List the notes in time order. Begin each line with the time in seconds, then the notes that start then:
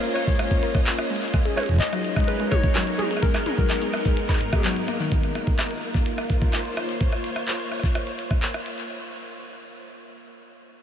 Already playing: A#3 C#4 F4 D#5
0.04 closed hi-hat, shaker
0.14 C#5, cross-stick, closed hi-hat
0.27 G#3, kick, closed hi-hat, shaker
0.31 shaker
0.35 shaker
0.39 cross-stick, closed hi-hat, shaker
0.43 shaker
0.47 A#3, kick, closed hi-hat, shaker
0.63 A#4, closed hi-hat
0.75 A#3, kick, cross-stick, closed hi-hat
0.87 clap, closed hi-hat
0.98 cross-stick, closed hi-hat
1.10 G#3, closed hi-hat
1.16 closed hi-hat
1.22 closed hi-hat
1.28 closed hi-hat
1.34 G#3, kick, cross-stick, closed hi-hat
1.43 D#4 G#4, closed hi-hat
1.56 G#3 C#5, cross-stick, closed hi-hat, high tom
1.60 closed hi-hat
1.63 closed hi-hat
1.66 kick, closed hi-hat
1.69 kick, closed hi-hat
1.74 kick
1.76 kick
1.79 D#5, kick, clap, closed hi-hat
1.89 F#3 A#4, cross-stick, closed hi-hat, shaker
2.05 closed hi-hat
2.16 G#3, kick, cross-stick, closed hi-hat
2.20 closed hi-hat
2.24 G#4 B4, closed hi-hat
2.28 closed hi-hat
2.32 closed hi-hat
2.36 closed hi-hat
2.40 G#3, closed hi-hat
2.51 C#5, kick, cross-stick, closed hi-hat, high tom
2.56 B3
2.64 kick, closed hi-hat
2.75 F#3, cross-stick, clap, closed hi-hat
2.87 closed hi-hat
2.98 G#3 G#4, closed hi-hat, high tom
3.11 G#4, closed hi-hat
3.17 cross-stick
3.22 G#3 A#4, kick, closed hi-hat
3.34 cross-stick, clap, closed hi-hat
3.46 closed hi-hat, high tom
3.58 F#3, kick
3.70 cross-stick, clap, closed hi-hat
3.82 G#3, closed hi-hat, shaker
3.93 G#4, cross-stick, closed hi-hat
3.97 closed hi-hat
4.01 closed hi-hat
4.05 G#3, kick, closed hi-hat, shaker
4.17 closed hi-hat
4.29 kick, cross-stick, clap, closed hi-hat
4.33 clap
4.37 clap
4.41 G#2, closed hi-hat
4.53 kick, cross-stick, closed hi-hat, high tom
4.55 high tom
4.57 high tom
4.60 high tom
4.62 F#3, clap, closed hi-hat, high tom
4.76 closed hi-hat
4.88 A#3, cross-stick, closed hi-hat
5.00 D#3
5.12 A#3, kick, closed hi-hat
5.23 closed hi-hat
5.35 cross-stick, closed hi-hat
5.47 kick, closed hi-hat
5.59 F4, cross-stick, clap, closed hi-hat
5.71 closed hi-hat
5.94 kick, closed hi-hat
6.06 closed hi-hat
6.14 C5
6.18 cross-stick, closed hi-hat
6.30 kick, closed hi-hat
6.42 C#5, kick, closed hi-hat
6.53 cross-stick, clap, closed hi-hat
6.65 closed hi-hat
6.77 cross-stick, closed hi-hat
6.89 closed hi-hat
7.01 kick, closed hi-hat
7.12 cross-stick, closed hi-hat
7.24 closed hi-hat
7.36 cross-stick, closed hi-hat
7.48 clap, closed hi-hat
7.60 closed hi-hat
7.72 cross-stick
7.79 kick, cross-stick
7.83 cross-stick, closed hi-hat
7.95 cross-stick, closed hi-hat
8.07 closed hi-hat
8.19 closed hi-hat
8.31 kick, cross-stick, closed hi-hat
8.42 clap, closed hi-hat
8.54 cross-stick, closed hi-hat
8.66 closed hi-hat
8.78 closed hi-hat